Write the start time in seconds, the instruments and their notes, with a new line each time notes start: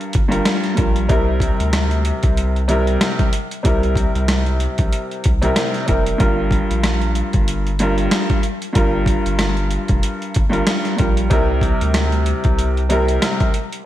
Already playing: upright piano G2 G3 F4 A#4
0.01 closed hi-hat
0.13 sub bass G1, kick, closed hi-hat
0.28 upright piano G2 G3 F4 A#4, closed hi-hat
0.45 cross-stick, snare, closed hi-hat
0.64 snare, closed hi-hat
0.75 sub bass A#1, upright piano G2 G3 F4 A#4, kick, closed hi-hat
0.96 closed hi-hat
1.09 sub bass C2, upright piano C3 G3 E4 A#4, kick, closed hi-hat
1.40 kick, closed hi-hat
1.60 sub bass D2, closed hi-hat
1.73 cross-stick, snare, closed hi-hat
1.91 closed hi-hat
2.05 closed hi-hat
2.23 sub bass C2, kick, closed hi-hat
2.37 closed hi-hat
2.56 closed hi-hat
2.68 upright piano C3 G3 E4 A#4, closed hi-hat
2.87 closed hi-hat
3.01 cross-stick, snare, closed hi-hat
3.19 kick, closed hi-hat
3.33 closed hi-hat
3.51 closed hi-hat
3.63 sub bass C2, upright piano C3 G3 E4 A#4, kick, closed hi-hat
3.83 closed hi-hat
3.96 kick, closed hi-hat
4.15 sub bass C2, closed hi-hat
4.28 cross-stick, snare, closed hi-hat
4.46 closed hi-hat
4.60 closed hi-hat
4.78 sub bass A#1, kick, closed hi-hat
4.93 closed hi-hat
5.11 closed hi-hat
5.24 sub bass C2, kick, closed hi-hat
5.42 upright piano C3 G3 E4 A#4, closed hi-hat
5.56 cross-stick, snare, closed hi-hat
5.74 snare, closed hi-hat
5.86 sub bass F1, upright piano C3 G3 E4 A#4, kick, closed hi-hat
6.06 closed hi-hat
6.18 sub bass G1, upright piano G2 G3 F4 A#4, kick, closed hi-hat
6.51 kick, closed hi-hat
6.71 sub bass A#1, closed hi-hat
6.83 cross-stick, snare, closed hi-hat
7.02 closed hi-hat
7.15 closed hi-hat
7.33 sub bass G1, kick, closed hi-hat
7.48 closed hi-hat
7.67 closed hi-hat
7.79 upright piano G2 G3 F4 A#4, closed hi-hat
7.98 closed hi-hat
8.11 cross-stick, snare, closed hi-hat
8.30 kick, closed hi-hat
8.43 closed hi-hat
8.62 closed hi-hat
8.73 sub bass G1, upright piano G2 G3 F4 A#4, kick, closed hi-hat
9.06 kick, closed hi-hat
9.26 sub bass G1, closed hi-hat
9.39 cross-stick, snare, closed hi-hat
9.57 closed hi-hat
9.71 closed hi-hat
9.88 sub bass F1, kick, closed hi-hat
10.03 closed hi-hat
10.22 closed hi-hat
10.34 sub bass G1, kick, closed hi-hat
10.50 upright piano G2 G3 F4 A#4, closed hi-hat
10.67 cross-stick, snare, closed hi-hat
10.85 snare, closed hi-hat
10.96 sub bass A#1, upright piano G2 G3 F4 A#4, kick, closed hi-hat
11.17 closed hi-hat
11.30 sub bass C2, upright piano C3 G3 E4 A#4, kick, closed hi-hat
11.61 kick, closed hi-hat
11.81 sub bass D2, closed hi-hat
11.94 cross-stick, snare, closed hi-hat
12.12 closed hi-hat
12.26 closed hi-hat
12.44 sub bass C2, kick, closed hi-hat
12.59 closed hi-hat
12.77 closed hi-hat
12.89 upright piano C3 G3 E4 A#4, closed hi-hat
13.08 closed hi-hat
13.22 cross-stick, snare, closed hi-hat
13.40 kick, closed hi-hat
13.54 closed hi-hat
13.72 closed hi-hat